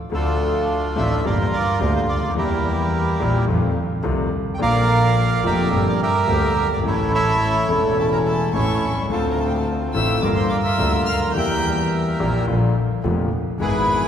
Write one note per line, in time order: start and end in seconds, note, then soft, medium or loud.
0.10 0.91 D2 medium
0.10 0.91 D3 medium
0.10 0.91 F3 medium
0.10 0.91 A3 medium
0.10 0.92 D4 medium
0.14 1.21 D4 medium
0.14 1.21 F4 medium
0.14 0.93 A4 medium
0.14 0.65 A4 medium
0.96 1.19 A1 medium
0.96 1.19 A2 medium
0.96 1.19 F3 medium
0.96 1.19 A3 medium
0.96 1.19 D4 medium
0.96 1.19 A4 medium
0.96 1.25 E5 medium
1.23 1.47 G1 medium
1.23 1.47 G2 medium
1.23 1.47 F3 medium
1.23 1.47 A#3 medium
1.23 1.48 D4 medium
1.23 2.32 F4 medium
1.23 1.48 G4 medium
1.23 1.80 A#4 medium
1.23 1.38 D5 medium
1.41 1.46 C5 medium
1.54 1.79 D5 medium
1.79 2.03 D2 medium
1.79 2.03 D3 medium
1.79 2.03 F3 medium
1.79 2.03 A#3 medium
1.79 2.03 D4 medium
1.79 2.03 G4 medium
1.79 1.93 A#4 medium
1.96 2.02 C5 medium
2.08 2.35 D2 medium
2.08 2.34 D5 medium
2.15 2.22 C#2 soft
2.22 2.29 D2 medium
2.29 2.36 D#2 medium
2.34 3.15 E2 medium
2.34 3.15 E3 medium
2.34 3.15 G3 medium
2.34 3.16 A#3 medium
2.34 3.16 G4 medium
2.38 3.45 E4 medium
2.38 3.45 G4 medium
2.38 3.45 A#4 medium
3.19 3.43 A#1 medium
3.19 3.43 A#2 medium
3.19 3.43 E3 medium
3.19 3.43 G3 medium
3.19 3.43 A#3 medium
3.19 3.43 G4 medium
3.47 3.71 F2 medium
3.47 3.71 D#3 medium
3.47 3.71 F3 medium
3.47 3.71 A3 medium
3.47 3.71 C4 medium
3.47 3.71 F4 medium
4.03 4.27 C2 medium
4.03 4.27 C3 medium
4.03 4.27 D#3 medium
4.03 4.27 A3 medium
4.03 4.27 C4 medium
4.03 4.27 F4 medium
4.54 5.38 D3 medium
4.54 4.60 G5 medium
4.58 5.39 A#1 medium
4.58 5.39 A#2 medium
4.58 5.39 F3 medium
4.58 5.39 A#3 medium
4.58 5.40 F4 medium
4.58 5.45 A#4 medium
4.58 5.69 D5 medium
4.58 5.41 F5 loud
5.43 5.67 F1 medium
5.43 5.67 F2 medium
5.43 5.67 D3 medium
5.43 5.67 F3 medium
5.43 5.67 A#3 medium
5.43 5.67 F4 medium
5.43 6.01 G4 medium
5.43 6.01 A#4 medium
5.43 5.88 E5 loud
5.72 5.95 G1 loud
5.72 5.95 G1 medium
5.72 5.95 G2 medium
5.72 5.95 D3 medium
5.72 5.95 G3 medium
5.72 5.95 A#3 medium
5.72 5.95 G4 medium
5.89 6.00 D5 medium
6.02 6.81 G4 medium
6.02 6.82 A#4 medium
6.02 6.68 E5 loud
6.27 6.51 D2 medium
6.27 6.51 D3 medium
6.27 6.51 G3 medium
6.27 6.51 A#3 medium
6.27 6.51 G4 medium
6.56 6.83 G1 medium
6.64 6.70 F#1 soft
6.70 6.77 G1 medium
6.70 6.85 D5 medium
6.77 6.84 G#1 medium
6.82 7.64 A1 medium
6.82 7.64 A2 medium
6.82 7.63 E3 medium
6.82 7.64 A3 medium
6.82 7.64 C#4 medium
6.82 7.65 A4 medium
6.87 7.94 E4 medium
6.87 7.13 A4 medium
6.87 7.12 C#5 medium
7.14 7.98 A4 medium
7.14 7.70 C#5 medium
7.14 7.71 E5 loud
7.67 8.49 E1 medium
7.67 8.49 E2 medium
7.67 8.48 E3 medium
7.67 8.49 A3 medium
7.67 8.49 C#4 medium
7.67 8.50 A4 medium
7.71 7.99 C#5 medium
7.99 9.07 C#4 medium
7.99 8.53 E4 medium
7.99 8.11 A4 medium
7.99 8.11 A5 medium
8.12 8.18 A#4 medium
8.12 8.19 A#5 medium
8.26 8.52 A4 medium
8.26 8.52 A5 medium
8.53 8.77 A1 medium
8.53 8.77 A2 medium
8.53 8.77 E3 medium
8.53 8.77 A3 medium
8.53 8.77 C#4 medium
8.53 9.07 E4 medium
8.53 8.77 A4 medium
8.53 9.07 A4 medium
8.53 8.94 C#5 medium
8.53 8.94 C#6 medium
8.81 9.09 C2 medium
8.89 8.96 B1 soft
8.96 9.03 C2 medium
9.03 9.10 C#2 medium
9.08 9.90 D2 medium
9.08 9.90 D3 medium
9.08 9.90 A3 medium
9.08 9.90 C4 medium
9.08 10.20 C4 soft
9.08 9.91 F4 medium
9.08 9.30 A4 medium
9.08 9.29 A5 medium
9.12 10.20 F4 soft
9.31 9.40 A#4 medium
9.31 9.39 A#5 soft
9.40 9.49 A4 medium
9.40 9.47 A5 soft
9.47 9.58 G4 medium
9.47 9.56 G5 soft
9.58 9.67 A4 soft
9.58 9.66 A5 soft
9.94 10.18 A1 medium
9.94 10.18 A2 medium
9.94 10.18 D3 medium
9.94 10.18 A3 medium
9.94 10.18 C4 medium
9.94 10.18 F4 medium
9.94 10.22 E5 medium
9.94 10.20 E6 medium
10.22 10.46 G1 medium
10.22 10.46 G2 medium
10.22 10.46 D3 medium
10.22 10.46 G3 medium
10.22 10.46 A#3 medium
10.22 10.46 F4 medium
10.22 11.32 F4 medium
10.22 10.66 A#4 medium
10.22 10.29 D5 medium
10.22 10.28 D6 medium
10.35 10.50 C5 medium
10.35 10.49 C6 medium
10.49 10.57 D5 medium
10.49 10.56 D6 medium
10.63 11.04 E5 medium
10.63 11.03 E6 medium
10.67 11.33 A#4 medium
10.78 11.02 D2 medium
10.78 11.02 D3 medium
10.78 11.02 G3 medium
10.78 11.02 A#3 medium
10.78 11.02 F4 medium
11.06 11.34 D2 medium
11.06 11.21 F5 medium
11.06 11.19 F6 medium
11.14 11.21 C#2 soft
11.20 11.28 D2 medium
11.28 11.35 D#2 medium
11.32 12.15 E2 medium
11.32 11.34 E3 medium
11.32 12.15 E3 medium
11.32 12.15 G3 medium
11.32 12.15 A#3 medium
11.32 11.86 G6 medium
11.36 12.16 G4 medium
11.36 12.46 A#4 medium
11.36 12.46 E5 medium
11.36 11.89 G5 medium
12.19 12.43 A#1 medium
12.19 12.43 A#2 medium
12.19 12.43 E3 medium
12.19 12.43 G3 medium
12.19 12.43 A#3 medium
12.19 12.43 G4 medium
12.47 12.71 A#1 medium
12.47 12.71 A#2 medium
12.47 12.71 D3 medium
12.47 12.71 F3 medium
12.47 12.71 A#3 medium
12.47 12.71 F4 medium
13.04 13.27 F1 medium
13.04 13.27 F2 medium
13.04 13.27 D3 medium
13.04 13.27 F3 medium
13.04 13.27 A#3 medium
13.04 13.28 F4 medium
13.58 14.08 G#1 medium
13.58 14.08 G#2 medium
13.58 14.08 E3 medium
13.58 14.08 G#3 medium
13.58 14.08 B3 medium
13.58 14.08 E4 medium
13.58 14.08 G#4 medium
13.58 14.08 B5 medium
13.63 14.08 B4 medium